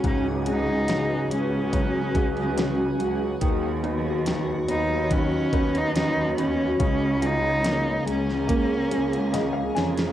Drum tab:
HH |x-x-x-x-x-xxx-x-|x-x-x-x-x-xxx-x-|x-x-x-x-x-xxx-xx|
SD |----o-------o---|----o-------o---|----o--o----o-oo|
BD |o-------o-o-----|o-------o-o-----|o-------o-------|